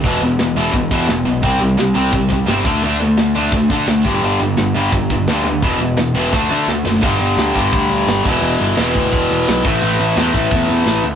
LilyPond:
<<
  \new Staff \with { instrumentName = "Distorted electric guitar" } { \clef bass \time 4/4 \key e \minor \tempo 4 = 172 <e, b, e>8 <e, b,>8 <e, b,>8 <e, b, e>8 <e, b,>8 <e, b, e>8 <e, b,>8 <e, b,>8 | <c g c'>8 <c g>8 <c g>8 <c g c'>8 <c g>8 <c g>8 <c g c'>8 <d a d'>8 | <d a d'>8 <d a>8 <d a>8 <d a d'>8 <d a>8 <d a d'>8 <d a>8 <g, d g>8 | <g, d g>8 <g, d>8 <g, d>8 <g, d g>8 <g, d>8 <g, d>8 <g, d g>8 <g, d>8 |
<e, b, e>8 <e, b,>8 <e, b,>8 <e, b, e>8 <d a d'>8 <d a d'>8 <d a>8 <d a>8 | <g, d g>4. <g, d g>2 <e, b, e>8~ | <e, b, e>4 <e, b, e>2~ <e, b, e>8 <a, e a>8~ | <a, e a>4 <a, e a>2~ <a, e a>8 r8 | }
  \new Staff \with { instrumentName = "Picked electric bass" } { \clef bass \time 4/4 \key e \minor e,,8 e,,8 e,,8 e,,8 e,,8 e,8 e,,8 b,,8 | c,8 c,8 c,8 c,8 c,4 g,,8 d,8 | d,8 d,8 d,8 d,8 d,8 d8 d,8 g,,8 | g,,8 g,,8 g,,8 g,,8 g,,4 d,8 d,8 |
e,,8 e,,8 e,,8 e,,8 d,8 d8 d,8 fis,,8 | g,,8 g,,8 d,8 g,,8 d,8 d,8 g,,8 e,,8 | e,,8 g,,8 e,,8 d,8 e,,8 e,,8 b,,8 a,,8 | a,,8 a,,8 e,8 a,,8 e,8 e,8 a,,8 d,8 | }
  \new DrumStaff \with { instrumentName = "Drums" } \drummode { \time 4/4 <hho bd>4 <hho sn>4 <hho bd>8 bd8 <hho sn>4 | <hho bd>4 <hho sn>4 <hho bd>8 bd8 <hho sn>8 bd8 | hho4 <hho sn>4 <hho bd>8 bd8 <hho sn>8 bd8 | hho4 <hho sn>4 <hho bd>8 bd8 <hho sn>4 |
<hho bd>4 <hho sn>4 <bd sn>4 sn8 sn8 | <cymc bd>8 cymc8 <cymc sn>8 <cymc bd>8 <cymc bd>8 cymc8 <cymc sn>8 <cymc bd>8 | cymc8 cymc8 <cymc sn>8 <cymc bd>8 <cymc bd>8 cymc8 <cymc sn>8 <cymc bd>8 | cymc8 cymc8 <cymc sn>8 <cymc bd>8 <cymc bd>8 cymc8 <cymc sn>8 cymc8 | }
>>